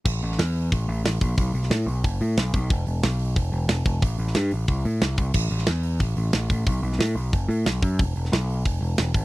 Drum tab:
CC |x---------------|----------------|----------------|----------------|
HH |--o-o-o-o-o-o-o-|o-o-o-o-o-o-o-o-|o-o-o-o-o-o-o-o-|o-o-o-o-o-o-o-o-|
SD |---oo-------o---|---oo-------o---|----o-------o---|---oo-------o---|
BD |o-------o-----o-|o-------o-----o-|o-------o-----o-|o-------o-----o-|

CC |x---------------|----------------|----------------|
HH |--o-o-o-o-o-o-o-|o-o-o-o-o-o-o-o-|o-o-o-o-o-o-o-o-|
SD |---oo-------o---|---oo-------o---|---oo-------o---|
BD |o-------o-----o-|o-------o-----o-|o-------o-----o-|